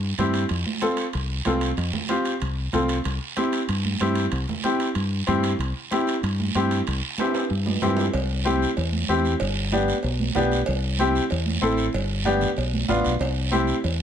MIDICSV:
0, 0, Header, 1, 4, 480
1, 0, Start_track
1, 0, Key_signature, 0, "major"
1, 0, Tempo, 317628
1, 760, Time_signature, 4, 2, 24, 8
1, 21187, End_track
2, 0, Start_track
2, 0, Title_t, "Upright piano"
2, 0, Program_c, 0, 0
2, 285, Note_on_c, 0, 60, 80
2, 295, Note_on_c, 0, 64, 66
2, 297, Note_on_c, 0, 67, 86
2, 619, Note_off_c, 0, 60, 0
2, 624, Note_off_c, 0, 64, 0
2, 625, Note_off_c, 0, 67, 0
2, 1236, Note_on_c, 0, 60, 72
2, 1236, Note_on_c, 0, 65, 66
2, 1243, Note_on_c, 0, 69, 89
2, 1575, Note_off_c, 0, 60, 0
2, 1575, Note_off_c, 0, 65, 0
2, 1579, Note_off_c, 0, 69, 0
2, 2205, Note_on_c, 0, 60, 81
2, 2206, Note_on_c, 0, 65, 70
2, 2214, Note_on_c, 0, 69, 80
2, 2541, Note_off_c, 0, 60, 0
2, 2541, Note_off_c, 0, 65, 0
2, 2545, Note_off_c, 0, 69, 0
2, 3161, Note_on_c, 0, 60, 72
2, 3171, Note_on_c, 0, 65, 68
2, 3180, Note_on_c, 0, 67, 85
2, 3499, Note_off_c, 0, 60, 0
2, 3505, Note_off_c, 0, 65, 0
2, 3509, Note_off_c, 0, 67, 0
2, 4127, Note_on_c, 0, 60, 76
2, 4128, Note_on_c, 0, 65, 71
2, 4139, Note_on_c, 0, 69, 81
2, 4464, Note_off_c, 0, 60, 0
2, 4464, Note_off_c, 0, 65, 0
2, 4470, Note_off_c, 0, 69, 0
2, 5087, Note_on_c, 0, 60, 75
2, 5093, Note_on_c, 0, 64, 66
2, 5100, Note_on_c, 0, 67, 78
2, 5425, Note_off_c, 0, 60, 0
2, 5428, Note_off_c, 0, 64, 0
2, 5431, Note_off_c, 0, 67, 0
2, 6054, Note_on_c, 0, 60, 77
2, 6061, Note_on_c, 0, 64, 75
2, 6064, Note_on_c, 0, 67, 84
2, 6390, Note_off_c, 0, 60, 0
2, 6393, Note_off_c, 0, 64, 0
2, 6394, Note_off_c, 0, 67, 0
2, 7012, Note_on_c, 0, 60, 77
2, 7021, Note_on_c, 0, 64, 69
2, 7024, Note_on_c, 0, 67, 84
2, 7349, Note_off_c, 0, 60, 0
2, 7354, Note_off_c, 0, 64, 0
2, 7355, Note_off_c, 0, 67, 0
2, 7963, Note_on_c, 0, 60, 84
2, 7967, Note_on_c, 0, 64, 71
2, 7974, Note_on_c, 0, 67, 81
2, 8305, Note_off_c, 0, 60, 0
2, 8308, Note_off_c, 0, 64, 0
2, 8311, Note_off_c, 0, 67, 0
2, 8934, Note_on_c, 0, 60, 75
2, 8941, Note_on_c, 0, 64, 75
2, 8951, Note_on_c, 0, 67, 82
2, 9272, Note_off_c, 0, 60, 0
2, 9275, Note_off_c, 0, 64, 0
2, 9280, Note_off_c, 0, 67, 0
2, 9905, Note_on_c, 0, 60, 78
2, 9912, Note_on_c, 0, 64, 71
2, 9912, Note_on_c, 0, 67, 89
2, 10238, Note_off_c, 0, 60, 0
2, 10241, Note_off_c, 0, 64, 0
2, 10241, Note_off_c, 0, 67, 0
2, 10876, Note_on_c, 0, 60, 75
2, 10878, Note_on_c, 0, 64, 69
2, 10886, Note_on_c, 0, 67, 78
2, 11203, Note_off_c, 0, 60, 0
2, 11204, Note_off_c, 0, 64, 0
2, 11208, Note_off_c, 0, 67, 0
2, 11818, Note_on_c, 0, 60, 75
2, 11818, Note_on_c, 0, 64, 70
2, 11828, Note_on_c, 0, 67, 79
2, 12154, Note_off_c, 0, 60, 0
2, 12154, Note_off_c, 0, 64, 0
2, 12159, Note_off_c, 0, 67, 0
2, 12770, Note_on_c, 0, 60, 81
2, 12775, Note_on_c, 0, 64, 70
2, 12781, Note_on_c, 0, 67, 93
2, 13110, Note_off_c, 0, 60, 0
2, 13112, Note_off_c, 0, 64, 0
2, 13115, Note_off_c, 0, 67, 0
2, 13735, Note_on_c, 0, 60, 82
2, 13739, Note_on_c, 0, 64, 70
2, 13744, Note_on_c, 0, 67, 91
2, 14071, Note_off_c, 0, 60, 0
2, 14073, Note_off_c, 0, 64, 0
2, 14076, Note_off_c, 0, 67, 0
2, 14692, Note_on_c, 0, 59, 76
2, 14697, Note_on_c, 0, 62, 75
2, 14704, Note_on_c, 0, 67, 82
2, 15029, Note_off_c, 0, 59, 0
2, 15031, Note_off_c, 0, 62, 0
2, 15034, Note_off_c, 0, 67, 0
2, 15647, Note_on_c, 0, 59, 87
2, 15651, Note_on_c, 0, 62, 80
2, 15664, Note_on_c, 0, 67, 92
2, 15985, Note_off_c, 0, 59, 0
2, 15987, Note_off_c, 0, 62, 0
2, 15994, Note_off_c, 0, 67, 0
2, 16612, Note_on_c, 0, 60, 84
2, 16617, Note_on_c, 0, 64, 74
2, 16625, Note_on_c, 0, 67, 96
2, 16947, Note_off_c, 0, 60, 0
2, 16949, Note_off_c, 0, 64, 0
2, 16953, Note_off_c, 0, 67, 0
2, 17554, Note_on_c, 0, 60, 86
2, 17567, Note_on_c, 0, 64, 81
2, 17573, Note_on_c, 0, 69, 91
2, 17896, Note_off_c, 0, 60, 0
2, 17903, Note_off_c, 0, 64, 0
2, 17906, Note_off_c, 0, 69, 0
2, 18516, Note_on_c, 0, 59, 80
2, 18518, Note_on_c, 0, 62, 78
2, 18527, Note_on_c, 0, 67, 96
2, 18856, Note_off_c, 0, 59, 0
2, 18858, Note_off_c, 0, 62, 0
2, 18862, Note_off_c, 0, 67, 0
2, 19471, Note_on_c, 0, 59, 82
2, 19476, Note_on_c, 0, 62, 77
2, 19485, Note_on_c, 0, 65, 89
2, 19813, Note_off_c, 0, 59, 0
2, 19815, Note_off_c, 0, 62, 0
2, 19820, Note_off_c, 0, 65, 0
2, 20423, Note_on_c, 0, 60, 77
2, 20433, Note_on_c, 0, 64, 79
2, 20436, Note_on_c, 0, 67, 88
2, 20768, Note_off_c, 0, 60, 0
2, 20773, Note_off_c, 0, 64, 0
2, 20775, Note_off_c, 0, 67, 0
2, 21187, End_track
3, 0, Start_track
3, 0, Title_t, "Fingered electric bass"
3, 0, Program_c, 1, 33
3, 0, Note_on_c, 1, 43, 93
3, 181, Note_off_c, 1, 43, 0
3, 276, Note_on_c, 1, 43, 85
3, 662, Note_off_c, 1, 43, 0
3, 762, Note_on_c, 1, 41, 99
3, 954, Note_off_c, 1, 41, 0
3, 1731, Note_on_c, 1, 36, 86
3, 2112, Note_off_c, 1, 36, 0
3, 2209, Note_on_c, 1, 36, 88
3, 2591, Note_off_c, 1, 36, 0
3, 2681, Note_on_c, 1, 41, 111
3, 2874, Note_off_c, 1, 41, 0
3, 3651, Note_on_c, 1, 36, 88
3, 4034, Note_off_c, 1, 36, 0
3, 4133, Note_on_c, 1, 36, 81
3, 4515, Note_off_c, 1, 36, 0
3, 4612, Note_on_c, 1, 36, 97
3, 4803, Note_off_c, 1, 36, 0
3, 5572, Note_on_c, 1, 43, 84
3, 5956, Note_off_c, 1, 43, 0
3, 6060, Note_on_c, 1, 43, 80
3, 6441, Note_off_c, 1, 43, 0
3, 6530, Note_on_c, 1, 36, 108
3, 6723, Note_off_c, 1, 36, 0
3, 7486, Note_on_c, 1, 43, 87
3, 7874, Note_off_c, 1, 43, 0
3, 7979, Note_on_c, 1, 43, 90
3, 8362, Note_off_c, 1, 43, 0
3, 8446, Note_on_c, 1, 36, 101
3, 8642, Note_off_c, 1, 36, 0
3, 9416, Note_on_c, 1, 43, 87
3, 9801, Note_off_c, 1, 43, 0
3, 9900, Note_on_c, 1, 43, 85
3, 10283, Note_off_c, 1, 43, 0
3, 10394, Note_on_c, 1, 36, 107
3, 10580, Note_off_c, 1, 36, 0
3, 11341, Note_on_c, 1, 43, 88
3, 11724, Note_off_c, 1, 43, 0
3, 11824, Note_on_c, 1, 43, 87
3, 12206, Note_off_c, 1, 43, 0
3, 12299, Note_on_c, 1, 36, 113
3, 13066, Note_off_c, 1, 36, 0
3, 13259, Note_on_c, 1, 40, 104
3, 13642, Note_off_c, 1, 40, 0
3, 13731, Note_on_c, 1, 40, 87
3, 14116, Note_off_c, 1, 40, 0
3, 14220, Note_on_c, 1, 31, 113
3, 14985, Note_off_c, 1, 31, 0
3, 15171, Note_on_c, 1, 35, 105
3, 15555, Note_off_c, 1, 35, 0
3, 15652, Note_on_c, 1, 35, 87
3, 16035, Note_off_c, 1, 35, 0
3, 16142, Note_on_c, 1, 36, 111
3, 16904, Note_off_c, 1, 36, 0
3, 17101, Note_on_c, 1, 40, 102
3, 17479, Note_off_c, 1, 40, 0
3, 17560, Note_on_c, 1, 33, 93
3, 17946, Note_off_c, 1, 33, 0
3, 18043, Note_on_c, 1, 31, 113
3, 18811, Note_off_c, 1, 31, 0
3, 19004, Note_on_c, 1, 35, 105
3, 19388, Note_off_c, 1, 35, 0
3, 19485, Note_on_c, 1, 33, 82
3, 19700, Note_off_c, 1, 33, 0
3, 19731, Note_on_c, 1, 35, 93
3, 19944, Note_off_c, 1, 35, 0
3, 19950, Note_on_c, 1, 36, 114
3, 20722, Note_off_c, 1, 36, 0
3, 20918, Note_on_c, 1, 40, 99
3, 21187, Note_off_c, 1, 40, 0
3, 21187, End_track
4, 0, Start_track
4, 0, Title_t, "Drums"
4, 268, Note_on_c, 9, 73, 66
4, 282, Note_on_c, 9, 65, 65
4, 284, Note_on_c, 9, 63, 81
4, 284, Note_on_c, 9, 64, 78
4, 419, Note_off_c, 9, 73, 0
4, 433, Note_off_c, 9, 65, 0
4, 435, Note_off_c, 9, 63, 0
4, 435, Note_off_c, 9, 64, 0
4, 510, Note_on_c, 9, 65, 67
4, 514, Note_on_c, 9, 73, 64
4, 661, Note_off_c, 9, 65, 0
4, 665, Note_off_c, 9, 73, 0
4, 742, Note_on_c, 9, 65, 64
4, 748, Note_on_c, 9, 74, 65
4, 767, Note_on_c, 9, 63, 33
4, 893, Note_off_c, 9, 65, 0
4, 899, Note_off_c, 9, 74, 0
4, 919, Note_off_c, 9, 63, 0
4, 1002, Note_on_c, 9, 63, 72
4, 1153, Note_off_c, 9, 63, 0
4, 1228, Note_on_c, 9, 73, 68
4, 1231, Note_on_c, 9, 65, 61
4, 1241, Note_on_c, 9, 63, 84
4, 1379, Note_off_c, 9, 73, 0
4, 1383, Note_off_c, 9, 65, 0
4, 1392, Note_off_c, 9, 63, 0
4, 1462, Note_on_c, 9, 73, 64
4, 1465, Note_on_c, 9, 65, 68
4, 1614, Note_off_c, 9, 73, 0
4, 1616, Note_off_c, 9, 65, 0
4, 1710, Note_on_c, 9, 74, 69
4, 1714, Note_on_c, 9, 65, 61
4, 1723, Note_on_c, 9, 63, 36
4, 1861, Note_off_c, 9, 74, 0
4, 1865, Note_off_c, 9, 65, 0
4, 1874, Note_off_c, 9, 63, 0
4, 2185, Note_on_c, 9, 73, 66
4, 2194, Note_on_c, 9, 65, 66
4, 2194, Note_on_c, 9, 66, 65
4, 2200, Note_on_c, 9, 63, 77
4, 2336, Note_off_c, 9, 73, 0
4, 2345, Note_off_c, 9, 65, 0
4, 2345, Note_off_c, 9, 66, 0
4, 2351, Note_off_c, 9, 63, 0
4, 2436, Note_on_c, 9, 65, 63
4, 2442, Note_on_c, 9, 73, 66
4, 2587, Note_off_c, 9, 65, 0
4, 2593, Note_off_c, 9, 73, 0
4, 2677, Note_on_c, 9, 63, 31
4, 2677, Note_on_c, 9, 74, 64
4, 2688, Note_on_c, 9, 65, 62
4, 2828, Note_off_c, 9, 63, 0
4, 2828, Note_off_c, 9, 74, 0
4, 2839, Note_off_c, 9, 65, 0
4, 2921, Note_on_c, 9, 63, 75
4, 2921, Note_on_c, 9, 64, 76
4, 3072, Note_off_c, 9, 63, 0
4, 3072, Note_off_c, 9, 64, 0
4, 3154, Note_on_c, 9, 63, 91
4, 3157, Note_on_c, 9, 73, 65
4, 3158, Note_on_c, 9, 65, 68
4, 3305, Note_off_c, 9, 63, 0
4, 3308, Note_off_c, 9, 73, 0
4, 3309, Note_off_c, 9, 65, 0
4, 3398, Note_on_c, 9, 73, 68
4, 3407, Note_on_c, 9, 65, 62
4, 3549, Note_off_c, 9, 73, 0
4, 3558, Note_off_c, 9, 65, 0
4, 3632, Note_on_c, 9, 74, 62
4, 3642, Note_on_c, 9, 63, 32
4, 3651, Note_on_c, 9, 65, 63
4, 3784, Note_off_c, 9, 74, 0
4, 3793, Note_off_c, 9, 63, 0
4, 3802, Note_off_c, 9, 65, 0
4, 4116, Note_on_c, 9, 73, 64
4, 4125, Note_on_c, 9, 63, 84
4, 4125, Note_on_c, 9, 64, 77
4, 4138, Note_on_c, 9, 65, 61
4, 4267, Note_off_c, 9, 73, 0
4, 4276, Note_off_c, 9, 63, 0
4, 4276, Note_off_c, 9, 64, 0
4, 4289, Note_off_c, 9, 65, 0
4, 4359, Note_on_c, 9, 73, 67
4, 4371, Note_on_c, 9, 65, 63
4, 4510, Note_off_c, 9, 73, 0
4, 4522, Note_off_c, 9, 65, 0
4, 4596, Note_on_c, 9, 74, 64
4, 4614, Note_on_c, 9, 65, 70
4, 4747, Note_off_c, 9, 74, 0
4, 4766, Note_off_c, 9, 65, 0
4, 5086, Note_on_c, 9, 65, 65
4, 5086, Note_on_c, 9, 73, 66
4, 5093, Note_on_c, 9, 63, 87
4, 5237, Note_off_c, 9, 65, 0
4, 5237, Note_off_c, 9, 73, 0
4, 5244, Note_off_c, 9, 63, 0
4, 5324, Note_on_c, 9, 73, 66
4, 5333, Note_on_c, 9, 65, 64
4, 5476, Note_off_c, 9, 73, 0
4, 5484, Note_off_c, 9, 65, 0
4, 5569, Note_on_c, 9, 63, 34
4, 5570, Note_on_c, 9, 74, 68
4, 5573, Note_on_c, 9, 65, 67
4, 5721, Note_off_c, 9, 63, 0
4, 5721, Note_off_c, 9, 74, 0
4, 5724, Note_off_c, 9, 65, 0
4, 5805, Note_on_c, 9, 63, 70
4, 5957, Note_off_c, 9, 63, 0
4, 6051, Note_on_c, 9, 73, 68
4, 6053, Note_on_c, 9, 63, 80
4, 6057, Note_on_c, 9, 65, 70
4, 6202, Note_off_c, 9, 73, 0
4, 6204, Note_off_c, 9, 63, 0
4, 6208, Note_off_c, 9, 65, 0
4, 6278, Note_on_c, 9, 65, 66
4, 6299, Note_on_c, 9, 73, 70
4, 6429, Note_off_c, 9, 65, 0
4, 6450, Note_off_c, 9, 73, 0
4, 6523, Note_on_c, 9, 65, 68
4, 6538, Note_on_c, 9, 63, 30
4, 6539, Note_on_c, 9, 74, 65
4, 6674, Note_off_c, 9, 65, 0
4, 6689, Note_off_c, 9, 63, 0
4, 6690, Note_off_c, 9, 74, 0
4, 6785, Note_on_c, 9, 63, 77
4, 6785, Note_on_c, 9, 64, 75
4, 6936, Note_off_c, 9, 63, 0
4, 6936, Note_off_c, 9, 64, 0
4, 7005, Note_on_c, 9, 65, 61
4, 7013, Note_on_c, 9, 63, 88
4, 7028, Note_on_c, 9, 73, 67
4, 7157, Note_off_c, 9, 65, 0
4, 7164, Note_off_c, 9, 63, 0
4, 7179, Note_off_c, 9, 73, 0
4, 7252, Note_on_c, 9, 65, 65
4, 7258, Note_on_c, 9, 73, 65
4, 7403, Note_off_c, 9, 65, 0
4, 7409, Note_off_c, 9, 73, 0
4, 7483, Note_on_c, 9, 65, 62
4, 7496, Note_on_c, 9, 74, 69
4, 7505, Note_on_c, 9, 63, 34
4, 7634, Note_off_c, 9, 65, 0
4, 7647, Note_off_c, 9, 74, 0
4, 7656, Note_off_c, 9, 63, 0
4, 7959, Note_on_c, 9, 73, 62
4, 7967, Note_on_c, 9, 65, 65
4, 7983, Note_on_c, 9, 63, 84
4, 7983, Note_on_c, 9, 64, 80
4, 8110, Note_off_c, 9, 73, 0
4, 8118, Note_off_c, 9, 65, 0
4, 8134, Note_off_c, 9, 63, 0
4, 8134, Note_off_c, 9, 64, 0
4, 8208, Note_on_c, 9, 73, 72
4, 8217, Note_on_c, 9, 65, 66
4, 8359, Note_off_c, 9, 73, 0
4, 8369, Note_off_c, 9, 65, 0
4, 8449, Note_on_c, 9, 74, 63
4, 8470, Note_on_c, 9, 65, 63
4, 8472, Note_on_c, 9, 63, 31
4, 8600, Note_off_c, 9, 74, 0
4, 8622, Note_off_c, 9, 65, 0
4, 8624, Note_off_c, 9, 63, 0
4, 8925, Note_on_c, 9, 73, 68
4, 8941, Note_on_c, 9, 63, 90
4, 8953, Note_on_c, 9, 65, 66
4, 9076, Note_off_c, 9, 73, 0
4, 9092, Note_off_c, 9, 63, 0
4, 9104, Note_off_c, 9, 65, 0
4, 9173, Note_on_c, 9, 73, 65
4, 9200, Note_on_c, 9, 65, 62
4, 9324, Note_off_c, 9, 73, 0
4, 9351, Note_off_c, 9, 65, 0
4, 9413, Note_on_c, 9, 63, 37
4, 9420, Note_on_c, 9, 74, 71
4, 9428, Note_on_c, 9, 65, 65
4, 9564, Note_off_c, 9, 63, 0
4, 9571, Note_off_c, 9, 74, 0
4, 9579, Note_off_c, 9, 65, 0
4, 9666, Note_on_c, 9, 63, 72
4, 9817, Note_off_c, 9, 63, 0
4, 9901, Note_on_c, 9, 73, 65
4, 9902, Note_on_c, 9, 63, 81
4, 9902, Note_on_c, 9, 65, 62
4, 10052, Note_off_c, 9, 73, 0
4, 10053, Note_off_c, 9, 63, 0
4, 10054, Note_off_c, 9, 65, 0
4, 10141, Note_on_c, 9, 65, 63
4, 10143, Note_on_c, 9, 73, 65
4, 10292, Note_off_c, 9, 65, 0
4, 10294, Note_off_c, 9, 73, 0
4, 10379, Note_on_c, 9, 63, 31
4, 10379, Note_on_c, 9, 74, 69
4, 10388, Note_on_c, 9, 65, 68
4, 10530, Note_off_c, 9, 63, 0
4, 10530, Note_off_c, 9, 74, 0
4, 10539, Note_off_c, 9, 65, 0
4, 10850, Note_on_c, 9, 63, 87
4, 10858, Note_on_c, 9, 73, 67
4, 10871, Note_on_c, 9, 65, 82
4, 11001, Note_off_c, 9, 63, 0
4, 11009, Note_off_c, 9, 73, 0
4, 11022, Note_off_c, 9, 65, 0
4, 11095, Note_on_c, 9, 73, 66
4, 11102, Note_on_c, 9, 65, 89
4, 11246, Note_off_c, 9, 73, 0
4, 11253, Note_off_c, 9, 65, 0
4, 11333, Note_on_c, 9, 74, 63
4, 11337, Note_on_c, 9, 63, 35
4, 11484, Note_off_c, 9, 74, 0
4, 11488, Note_off_c, 9, 63, 0
4, 11576, Note_on_c, 9, 66, 78
4, 11583, Note_on_c, 9, 63, 71
4, 11727, Note_off_c, 9, 66, 0
4, 11734, Note_off_c, 9, 63, 0
4, 11816, Note_on_c, 9, 63, 80
4, 11816, Note_on_c, 9, 64, 80
4, 11817, Note_on_c, 9, 73, 68
4, 11827, Note_on_c, 9, 66, 98
4, 11967, Note_off_c, 9, 63, 0
4, 11967, Note_off_c, 9, 64, 0
4, 11968, Note_off_c, 9, 73, 0
4, 11979, Note_off_c, 9, 66, 0
4, 12038, Note_on_c, 9, 66, 96
4, 12069, Note_on_c, 9, 73, 67
4, 12189, Note_off_c, 9, 66, 0
4, 12220, Note_off_c, 9, 73, 0
4, 12294, Note_on_c, 9, 56, 104
4, 12306, Note_on_c, 9, 74, 64
4, 12445, Note_off_c, 9, 56, 0
4, 12458, Note_off_c, 9, 74, 0
4, 12781, Note_on_c, 9, 63, 83
4, 12782, Note_on_c, 9, 73, 69
4, 12932, Note_off_c, 9, 63, 0
4, 12933, Note_off_c, 9, 73, 0
4, 13031, Note_on_c, 9, 73, 74
4, 13182, Note_off_c, 9, 73, 0
4, 13252, Note_on_c, 9, 56, 82
4, 13258, Note_on_c, 9, 74, 69
4, 13403, Note_off_c, 9, 56, 0
4, 13409, Note_off_c, 9, 74, 0
4, 13484, Note_on_c, 9, 63, 70
4, 13635, Note_off_c, 9, 63, 0
4, 13729, Note_on_c, 9, 63, 82
4, 13735, Note_on_c, 9, 73, 71
4, 13880, Note_off_c, 9, 63, 0
4, 13886, Note_off_c, 9, 73, 0
4, 13974, Note_on_c, 9, 73, 67
4, 14125, Note_off_c, 9, 73, 0
4, 14203, Note_on_c, 9, 56, 105
4, 14218, Note_on_c, 9, 74, 69
4, 14354, Note_off_c, 9, 56, 0
4, 14369, Note_off_c, 9, 74, 0
4, 14689, Note_on_c, 9, 63, 81
4, 14691, Note_on_c, 9, 73, 71
4, 14840, Note_off_c, 9, 63, 0
4, 14842, Note_off_c, 9, 73, 0
4, 14934, Note_on_c, 9, 73, 72
4, 15085, Note_off_c, 9, 73, 0
4, 15153, Note_on_c, 9, 56, 81
4, 15178, Note_on_c, 9, 74, 72
4, 15305, Note_off_c, 9, 56, 0
4, 15329, Note_off_c, 9, 74, 0
4, 15409, Note_on_c, 9, 63, 74
4, 15561, Note_off_c, 9, 63, 0
4, 15638, Note_on_c, 9, 66, 76
4, 15641, Note_on_c, 9, 63, 85
4, 15641, Note_on_c, 9, 64, 85
4, 15658, Note_on_c, 9, 73, 69
4, 15789, Note_off_c, 9, 66, 0
4, 15792, Note_off_c, 9, 63, 0
4, 15792, Note_off_c, 9, 64, 0
4, 15810, Note_off_c, 9, 73, 0
4, 15893, Note_on_c, 9, 73, 71
4, 16044, Note_off_c, 9, 73, 0
4, 16111, Note_on_c, 9, 56, 108
4, 16133, Note_on_c, 9, 74, 72
4, 16262, Note_off_c, 9, 56, 0
4, 16284, Note_off_c, 9, 74, 0
4, 16603, Note_on_c, 9, 63, 78
4, 16611, Note_on_c, 9, 73, 74
4, 16754, Note_off_c, 9, 63, 0
4, 16762, Note_off_c, 9, 73, 0
4, 16855, Note_on_c, 9, 73, 74
4, 17006, Note_off_c, 9, 73, 0
4, 17078, Note_on_c, 9, 74, 74
4, 17085, Note_on_c, 9, 56, 86
4, 17229, Note_off_c, 9, 74, 0
4, 17236, Note_off_c, 9, 56, 0
4, 17316, Note_on_c, 9, 63, 70
4, 17467, Note_off_c, 9, 63, 0
4, 17553, Note_on_c, 9, 63, 86
4, 17557, Note_on_c, 9, 73, 76
4, 17704, Note_off_c, 9, 63, 0
4, 17708, Note_off_c, 9, 73, 0
4, 17792, Note_on_c, 9, 73, 75
4, 17943, Note_off_c, 9, 73, 0
4, 18026, Note_on_c, 9, 74, 69
4, 18049, Note_on_c, 9, 56, 97
4, 18177, Note_off_c, 9, 74, 0
4, 18201, Note_off_c, 9, 56, 0
4, 18509, Note_on_c, 9, 63, 85
4, 18509, Note_on_c, 9, 73, 72
4, 18660, Note_off_c, 9, 63, 0
4, 18660, Note_off_c, 9, 73, 0
4, 18754, Note_on_c, 9, 73, 74
4, 18759, Note_on_c, 9, 64, 72
4, 18906, Note_off_c, 9, 73, 0
4, 18911, Note_off_c, 9, 64, 0
4, 18989, Note_on_c, 9, 74, 71
4, 19007, Note_on_c, 9, 56, 83
4, 19141, Note_off_c, 9, 74, 0
4, 19158, Note_off_c, 9, 56, 0
4, 19239, Note_on_c, 9, 63, 73
4, 19390, Note_off_c, 9, 63, 0
4, 19474, Note_on_c, 9, 63, 88
4, 19474, Note_on_c, 9, 64, 87
4, 19478, Note_on_c, 9, 73, 72
4, 19626, Note_off_c, 9, 63, 0
4, 19626, Note_off_c, 9, 64, 0
4, 19630, Note_off_c, 9, 73, 0
4, 19714, Note_on_c, 9, 73, 77
4, 19865, Note_off_c, 9, 73, 0
4, 19940, Note_on_c, 9, 74, 66
4, 19959, Note_on_c, 9, 56, 108
4, 20092, Note_off_c, 9, 74, 0
4, 20110, Note_off_c, 9, 56, 0
4, 20432, Note_on_c, 9, 63, 84
4, 20433, Note_on_c, 9, 73, 76
4, 20583, Note_off_c, 9, 63, 0
4, 20584, Note_off_c, 9, 73, 0
4, 20662, Note_on_c, 9, 73, 71
4, 20813, Note_off_c, 9, 73, 0
4, 20916, Note_on_c, 9, 56, 77
4, 20920, Note_on_c, 9, 74, 73
4, 21067, Note_off_c, 9, 56, 0
4, 21071, Note_off_c, 9, 74, 0
4, 21187, End_track
0, 0, End_of_file